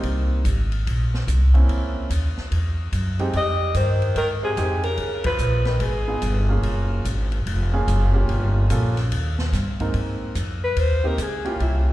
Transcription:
Already playing: G3 A#3 C4 D#4
0.03 C2, kick, ride
0.44 G#1, kick, hi-hat pedal, ride
0.72 ride
0.86 A#1, kick, ride
1.14 snare
1.27 C2, kick, hi-hat pedal, ride
1.54 A#3 C4 C#4 E4, kick, ride
1.69 C#2, kick, ride
2.10 D#2, kick, hi-hat pedal, ride
2.37 muted upright bass stroke, snare
2.51 E2, kick, ride
2.92 F#2, kick, hi-hat pedal, ride
3.19 G#3 C4 D#4 G4, ride
3.33 F2 G3 D#5, kick, ride
3.74 G2 D#3 C5, kick, hi-hat pedal, ride
4.02 ride
4.15 G#2 D#3 A#4, kick, ride
4.43 C3 G#4
4.57 F2 G#3 C4 D#4 G4, kick, hi-hat pedal, ride
4.83 C#3 A#4, ride
4.97 C#2, kick, ride
5.24 F3 B4, kick, ride
5.38 A#1, hi-hat pedal
5.65 D#3 B4, snare, ride
5.80 G#1 B2 G#4, kick, ride
6.08 B3 D#4 F4 G#4
6.22 G1, kick, hi-hat pedal, ride
6.49 A#3 C#4 F4 G#4
6.63 F#1, kick, ride
7.05 G#1, kick, hi-hat pedal, ride
7.32 ride
7.46 F1, kick, ride
7.73 A#3 C#4 F4 G#4
7.88 F#1, kick, hi-hat pedal, ride
8.13 A#3 C#4 F4 G4
8.29 G1, kick, ride
8.70 A#1 A#3 C#4 F4 A4, kick, hi-hat pedal, ride
8.97 snare, ride
9.11 D#2, kick, ride
9.38 snare
9.52 G2, kick, snare, hi-hat pedal, ride
9.80 G#2 A#3 C4 D#4 A#4, kick, ride
9.94 G#2, ride
10.35 F2, kick, hi-hat pedal, ride
10.64 B4
10.76 D#2 C5, kick, ride
11.04 A#3 C4 D#4 G4 A#4
11.18 C#2, kick, hi-hat pedal, ride
11.22 G#4
11.45 A#3 C#4 E4 F4 G4, ride
11.60 C2 E4, kick, ride
11.77 F4

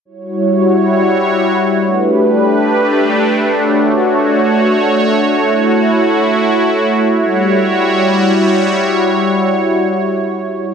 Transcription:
0.05 G3 E4 F#4 C#5
1.84 A3 D4 G4 B4
3.64 F#4 C#5
5.43 E4 F#4
7.22 G3 E4 F#4 C#5

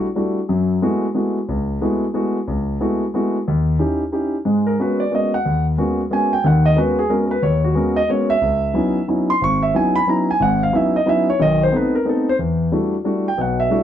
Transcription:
0.16 G3 A3 D4 E4 F#4
0.49 F#2 F#3
0.82 G#3 A3 B3 E4 F#4
1.15 G#3 A3 B3 E4 F#4
1.49 C#2
1.81 G#3 A3 B3 E4 F#4
2.14 G#3 A3 B3 E4 F#4
2.48 C#2
2.80 G#3 A3 B3 E4 F#4
3.14 G#3 A3 B3 E4 F#4
3.48 D#2
3.78 C#4 D#4 E4 G4
4.12 C#4 D#4 E4 G4
4.45 G#2 G#3
4.67 A#4
4.79 G#3 A#3 B3 C#4 F#4 B4
5.00 D5
5.11 G#3 A#3 B3 C#4 F#4 D#5
5.34 F#5
5.45 D#2
5.78 G#3 A#3 B3 C#4 F#4
6.10 G#3 A#3 B3 C#4 F#4 G#5
6.33 G5
6.44 D#2 D#3 F#5
6.66 D#5
6.76 G#3 A#3 B3 C#4 F#4 B4
6.99 G#4
7.09 G#3 A#3 B3 C#4 F#4 A#4
7.27 A#4
7.31 B4
7.42 D#2 C#5
7.64 F#4
7.74 G#3 A#3 B3 C#4 F#4 A#4
7.96 D#5
8.09 G#3 A#3 B3 C#4 F#4 C#5
8.30 E5
8.41 C#2
8.74 F#3 B3 C#4 D#4 E4
9.08 F#3 B3 C#4 D#4 E4
9.30 C6
9.41 G#1 C#6
9.63 E5
9.74 F#3 B3 C#4 D#4 E4 G#5
9.95 B5
10.07 F#3 B3 C#4 D#4 E4 A#5
10.31 G#5
10.40 G#1 G#2 F#5
10.63 F5
10.73 F#3 B3 C#4 D#4 E4 E5
10.96 D#5
11.06 F#3 B3 C#4 D#4 E4 E5
11.30 C#5
11.39 B1 D#3 D#5
11.63 C5
11.72 A3 B3 C4 D#4
11.76 B4
11.95 A#4
12.05 A3 B3 C4 D#4 A4
12.29 C5
12.39 E2
12.72 G3 A3 D4 E4 F#4
13.04 G3 A3 D4 E4 F#4
13.28 G5
13.38 B1 B2 F#5
13.60 E5
13.70 G3 A3 D4 E4 F#4

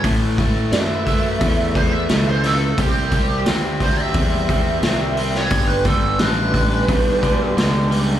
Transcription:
0.04 A2 E3 A3 C#4 E4 A4, kick, open hi-hat
0.38 A2 E3 A3, kick, open hi-hat
0.72 F#2 A2 E3 A3 E5, snare, open hi-hat
1.06 A2 E3 A3, kick, open hi-hat
1.41 E2 A2 E3 A3, kick, open hi-hat
1.75 A2 E3 A3 C5, kick, open hi-hat
1.92 E5
2.09 C#2 A2 E3 A3, snare, open hi-hat
2.29 C5
2.44 A2 E3 A3 A4, snare, open hi-hat
2.78 C2 C3 G3 C4 E4 G4, kick, open hi-hat
3.11 C3 G3 C4, kick, open hi-hat
3.46 D2 C3 G3 C4, snare, open hi-hat
3.80 C3 G3 C4 C5, kick, open hi-hat
4.01 E5
4.14 E2 C3 G3 C4, kick, open hi-hat
4.49 C3 G3 C4, kick, open hi-hat
4.83 C2 C3 G3 C4, snare, open hi-hat
5.17 C3 G3 C4, open hi-hat
5.34 C#5, snare
5.50 G1 G2 D3 G3 C4 D#4 G#4, kick, open hi-hat
5.67 B4
5.74 B3 D4 G4
5.85 G2 D3 G3 A4, kick, open hi-hat
6.19 A1 G2 D3 G3 B4, snare, open hi-hat
6.54 G2 D3 G3, kick, open hi-hat
6.88 B1 G2 D3 G3, kick, open hi-hat
7.22 G2 D3 G3, kick, open hi-hat
7.57 C#2 G2 D3 G3, snare, open hi-hat
7.90 G2 D3 G3, open hi-hat

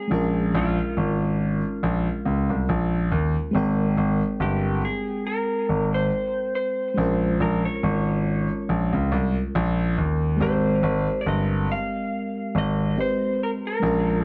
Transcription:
Already playing: G#4
0.08 A#1 G#3 C#4
0.12 F4 A#4
0.55 A#1 F4
0.97 G#1
1.83 A#1
2.25 C#2
2.50 C2
2.69 A#1
3.12 D#2
3.51 G#1 G#3 C4
3.55 A#4 G5
3.97 G#1
4.40 G1 G4
4.85 G#4
5.27 A#4
5.69 G#1
5.94 C5
6.55 C5
6.94 A#1 G#3 C#4 F4
7.00 A#4
7.40 A#1 A#4
7.65 C#5
7.83 G#1
8.69 A#1
8.93 C#2
9.12 C2
9.55 A#1
9.98 D#2
10.37 G#1 G#3 C4 G4
10.42 A#4 C5
10.83 G#1
11.21 D5
11.26 G1 D#5
11.72 F5
12.55 G#1 D#5
12.97 G#3 C4 G4 B4 C5
13.06 C5
13.43 A#4
13.67 A#4
13.80 A#1 G#3 C#4 F4
13.86 A#4

